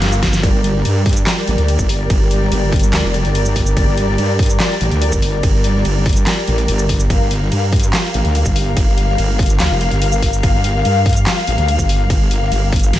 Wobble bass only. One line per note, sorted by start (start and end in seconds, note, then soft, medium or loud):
0.00 0.42 G1 loud
0.43 0.83 G1 loud
0.85 1.25 G2 loud
1.48 1.56 A1 loud
1.58 1.77 D2 loud
1.79 2.08 G1 loud
2.10 2.50 G1 loud
2.52 2.92 G1 loud
2.93 3.02 D2 loud
3.04 3.23 F1 loud
3.25 3.75 G1 loud
3.77 4.17 G1 loud
4.18 4.58 G2 loud
4.81 4.90 A1 loud
4.91 5.11 D2 loud
5.12 5.42 G1 loud
5.43 5.83 G1 loud
5.85 6.25 G1 loud
6.48 6.67 A1 loud
6.68 7.08 G1 loud
7.10 7.50 G1 loud
7.52 7.92 G2 loud
8.14 8.23 A1 loud
8.25 8.44 D2 loud
8.46 8.75 G1 loud
8.77 9.17 G1 loud
9.18 9.58 G1 loud
9.60 9.69 D2 loud
9.71 9.90 F1 loud
9.91 10.42 G1 loud
10.43 10.83 G1 loud
10.85 11.25 G2 loud
11.47 11.56 A1 loud
11.58 11.77 D2 loud
11.79 12.08 G1 loud
12.10 12.50 G1 loud
12.52 12.92 G1 loud
12.93 12.99 G1 loud